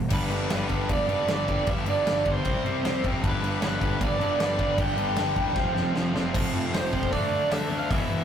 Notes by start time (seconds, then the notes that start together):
Already playing: E2 B2
0.09 G1 G2 D3 G3 B3 D4 G4, kick, crash
0.13 B4
0.29 G2 D3 G3 B3 D4 G4, crash
0.48 G1 G2 D3 G3 B3 D4 G4, snare, crash
0.54 B4
0.68 G1 G2 D3 G3 B3 D4 G4, kick, crash
0.89 G1 G2 D3 G3 B3 D4 G4 D5, kick, crash
1.07 G2 D3 G3 B3 D4 G4, crash
1.11 F1
1.27 G1 G2 D3 G3 B3 D4 G4, snare, crash
1.32 D3 G3 D5
1.47 G2 D3 G3 B3 D4 G4, kick, crash
1.51 G2 D3 G3
1.66 G1 G2 D3 G3 B3 D4 G4, kick, crash
1.70 E5
1.86 G1 G2 D3 G3 B3 D4 G4 D5, crash
2.05 G2 D3 G3 B3 D4 G4, snare, crash
2.09 G1
2.25 G1 G2 D3 G3 B3 D4 G4, kick, crash
2.32 C5
2.44 C2 C3 G3 C4 G4, kick, crash
2.63 C2 C3 G3 C4 G4, crash
2.84 C2 C3 G3 C4 G4, snare, crash
3.03 F1 C3 G3 C4 G4, kick, crash
3.22 G1 G2 D3 G3 B3 D4 G4 B4, kick, crash
3.29 B4
3.40 G2 D3 G3 B3 D4 G4 B4, crash
3.60 G1 G2 D3 G3 B3 D4 G4 B4, snare, crash
3.64 B4
3.79 G1 G2 D3 G3 B3 D4 G4 B4, kick, crash
3.99 G1 G2 D3 G3 B3 D4 G4 B4, kick, crash
4.05 D5
4.18 F1 G2 D3 G3 B3 D4 G4 B4, crash
4.37 G1 G2 D3 G3 B3 D4 G4 B4 D5, snare, crash
4.41 G3
4.57 G2 D3 G3 B3 D4 G4 B4, kick, crash
4.77 G1 G2 D3 G3 B3 D4 G4 B4 G5, kick, crash
4.97 G1 G2 D3 G3 B3 D4 G4 B4, crash
5.16 G1 G2 D3 G3 B3 D4 G4 B4, snare, crash
5.35 E1 G2 D3 G3 B3 D4 G4 B4, kick, crash
5.55 F1 F2 C3 F3 C4 F4 C5, kick, snare
5.74 F1 F2 C3 F3 C4 F4 C5, snare
5.94 F1 F2 C3 F3 C4 F4 C5, snare
6.14 F1 F2 C3 F3 C4 F4 C5, snare
6.33 F1 F2 C3 F3 A3 C4 F4, kick, crash
6.54 F1
6.73 F1 C5, snare, open hi-hat
6.82 C5
6.93 F2 C3 F3, kick
7.03 kick
7.10 D2 D3 A3 D4 F4 D5, kick, open hi-hat
7.50 D2 E5, snare, open hi-hat
7.70 D2 D3 A3 D4
7.79 F5
7.89 E1 E2 B2 E3 G#3 B3 E4 E5, kick, open hi-hat
8.00 E5
8.10 E1